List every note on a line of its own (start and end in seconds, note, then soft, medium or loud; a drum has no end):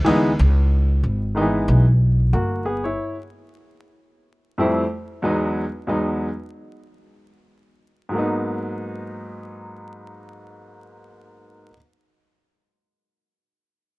0.00 0.36 D2 medium
0.05 0.30 E3 medium
0.05 0.30 G#3 medium
0.05 0.31 B3 medium
0.05 0.31 D#4 loud
0.05 ride medium
0.39 1.00 C#2 loud
1.03 1.65 G#1 medium
1.35 1.43 D#3 medium
1.35 1.83 G#3 medium
1.35 1.83 B3 medium
1.35 1.84 D#4 medium
1.41 1.86 E3 medium
1.68 2.29 B1 loud
2.33 2.94 G1 medium
2.33 2.64 A#3 medium
2.33 2.64 F#4 medium
2.65 2.83 B3 medium
2.65 2.83 G#4 medium
2.84 3.15 E4 medium
2.84 3.14 C#5 medium
4.58 4.82 F2 medium
4.58 4.83 G3 medium
4.58 4.83 A3 medium
4.58 4.83 C4 medium
4.58 4.84 E4 medium
5.22 5.62 E2 medium
5.22 5.63 F#3 medium
5.22 5.63 G#3 medium
5.22 5.63 B3 medium
5.22 5.64 D#4 medium
5.87 6.27 E2 medium
5.87 6.27 F#3 medium
5.87 6.28 G#3 medium
5.87 6.28 B3 medium
5.87 6.28 D#4 medium
8.09 11.66 G#2 medium
8.09 11.68 F#3 medium
8.13 11.70 A#3 medium
8.13 11.73 B3 medium
8.18 11.75 D#4 medium